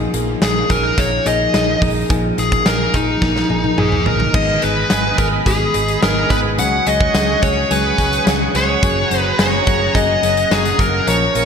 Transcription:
Already playing: F3 A#3 D#4 G#4
0.13 A#1 F3 A#3 D#4 G#4, closed hi-hat
0.41 A#1 F3 A#3 D#4 G#4, snare, closed hi-hat
0.69 A#1 F3 A#3 C#4 D#4 G#4 A#4, kick, closed hi-hat
0.83 D#4
0.97 A#1 F3 A#3 D#4 G#4 C#5, kick, closed hi-hat
1.25 A#1 F3 A#3 D#4 G#4 D#5, closed hi-hat
1.53 A#1 F3 A#3 D#4 G#4, snare, closed hi-hat
1.81 A#1 F3 A#3 D#4 G#4, kick, open hi-hat
2.09 A#1 F3 A#3 D#4 G#4, kick, closed hi-hat
2.37 A#1 F3 A#3 D#4 G#4, closed hi-hat
2.52 kick, closed hi-hat
2.65 A#1 F3 A#3 D#4 G#4 A#4, snare, closed hi-hat
2.93 A#1 F3 A#3 D#4 G#4, kick, closed hi-hat
3.21 A#1 F3 A#3 D#4 G#4, kick, snare
3.36 snare
3.49 A#1 F3 A#3 D#4 G#4, high tom
3.64 high tom
3.77 A#1 F3 A#3 D#4 G#4, mid tom
3.92 mid tom
4.05 A#1 F3 A#3 D#4 G#4 A#4, floor tom
4.20 floor tom
4.34 G#1 D#3 G#3 B3 G#4 D#5 B5, kick, crash
4.61 G#1 D#3 G#3 B3 D#4 G#4 B4, closed hi-hat
4.90 G#1 D#3 G#3 B3 G#4, snare, closed hi-hat
5.18 G#1 D#3 G#3 B3 D#4 G#4 A#4, kick, closed hi-hat
5.46 G#1 D#3 G#3 B3 G#4, kick, closed hi-hat
5.74 G#1 D#3 G#3 B3 D#4 G#4, closed hi-hat
5.88 closed hi-hat
6.02 G#1 D#3 G#3 B3 G#4 A#4, snare, closed hi-hat
6.30 G#1 D#3 G#3 B3 G#4 B4, kick, closed hi-hat
6.58 C#2 F#3 G#3 C#4 G#4 F#5 C#6, closed hi-hat
6.86 C#2 F#3 G#3 C#4 G#4 D#5, closed hi-hat
7.01 kick
7.14 C#2 F#3 G#3 C#4 G#4, snare, closed hi-hat
7.42 C#2 F#3 G#3 C#4 G#4 C#5, kick, closed hi-hat
7.70 C#2 F#3 G#3 C#4 G#4 B4, closed hi-hat
7.98 C#2 F#3 G#3 C#4 G#4, kick, closed hi-hat
8.13 closed hi-hat
8.26 C#2 F#3 G#3 C#4 G#4, snare, closed hi-hat
8.54 C#2 F#3 G#3 C#4 G#4 C#5, closed hi-hat
8.83 F#1 F#3 A#3 C#4 G#4 A#5, kick, closed hi-hat
9.10 F#1 F#3 A#3 C#4 F#4, closed hi-hat
9.18 B4
9.39 F#1 F#3 A#3 C#4 G#4 C#5, snare, closed hi-hat
9.67 F#1 F#3 A#3 C#4 G#4, kick, closed hi-hat
9.94 F#1 F#3 A#3 C#4 G#4 D#5, kick, closed hi-hat
10.22 F#1 F#3 A#3 C#4 G#4, closed hi-hat
10.37 closed hi-hat
10.51 F#1 F#3 A#3 C#4 F#4 G#4, snare, closed hi-hat
10.65 G#4, closed hi-hat
10.79 F#1 F#3 A#3 C#4 G#4 A#4, kick, closed hi-hat
11.07 A#1 F3 A#3 C#4 A#4 C#5 F5 C#6, closed hi-hat
11.35 A#1 F3 A#3 C#4 A#4, closed hi-hat

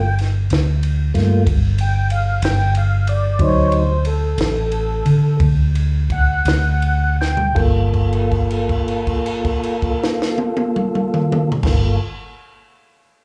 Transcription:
Already playing: G1 G5
0.18 snare, ride
0.50 D2, snare, ride
0.83 ride
1.14 G2 A3 A#3 F4, snare, ride
1.47 G1, kick, ride
1.78 G5, ride
2.10 F5, ride
2.42 G1 G5, snare, ride
2.75 F5, ride
3.07 D5, ride
3.39 D2 F#3 D#4 C5, kick, ride
3.43 C#5
3.72 C5, ride
4.05 A4, ride
4.38 A1, snare, ride
4.72 ride
5.06 D3, ride
5.40 D2, kick, ride
5.75 ride
6.10 F#5, kick, ride
6.45 D2, snare, ride
6.82 ride
7.21 G5, snare
7.37 floor tom
7.55 G1 A#3 F4 A4, kick, crash
7.94 kick, crash
8.13 crash
8.32 kick, crash
8.51 crash
8.69 kick, crash
8.88 crash
9.07 kick, crash
9.26 crash
9.45 kick, crash
9.63 crash
9.82 kick, crash
10.04 snare
10.22 snare
10.38 high tom
10.57 high tom
10.76 mid tom
10.95 mid tom
11.14 mid tom
11.32 mid tom
11.52 floor tom
11.62 G1 A#3 F4 A4, kick, snare, crash

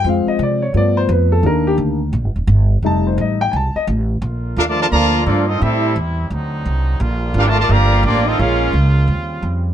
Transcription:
0.04 F2 F3 G#3 C4
0.08 F5
0.27 D#5, muted upright bass stroke
0.39 C3
0.43 D5
0.62 C#5
0.73 G2 F3 A3 B3 C#5
0.77 D5
0.97 C5
1.09 F2 B4
1.32 A4
1.43 D#2 D#3 A#3 D4 A#4
1.67 G4
1.78 D2
2.13 A#1
2.24 G1
2.36 D#1
2.47 G1
2.83 F1 G3 A3 D#4 A5
3.07 C5
3.18 A1 D#5
3.41 G5
3.52 C2 G#5
3.56 A5
3.75 D#5, muted upright bass stroke
3.87 A1
4.22 A#1 D3 A#3 F4
4.57 D#2 A3 D4 F4 A4 A#4 F5
4.68 D3 F3 A3 F4 A#4 D5 A5
4.78 D3 F3 A3 F4 A#4 D5 A5
4.90 D2 D3 F3 A#3 F4 D5 A5 A#5
5.24 G2 F3 A3 A#3 D4 F4 A4 D5
5.47 C4 D#4 F4 A4 D#5
5.59 A2 C3 G3 C4 E4 G4 A4 E5
5.96 E2
6.30 D2 D3 F#3 C4 D#4
6.66 C2
7.00 A#1 D3 G3 A#3 F4
7.34 G#1 A#3 D4 F4 G4
7.38 A#4 F5
7.47 A3 F4 A#4 D5 A5
7.59 A3 F4 A#4 D5 A5
7.69 G1 D3 F3 A#3 G4 D5 F5 A#5
8.03 A1 F3 A#3 D4 F4 G4 D5
8.26 C4 D#4 F4 A4 D#5
8.39 A#1 C#3 G#3 A#3 C#4 F4 G#4 A#4 F5
8.73 C#2
9.08 D#2 C#3 G3 C4
9.43 F2

